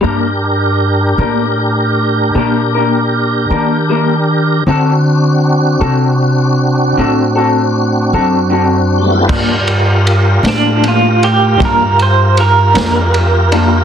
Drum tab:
CC |------------|------------|x-----------|
RD |------------|------------|-xxxxxxxxxxx|
SD |------------|------------|---o-----o--|
BD |------------|------------|o-----o-----|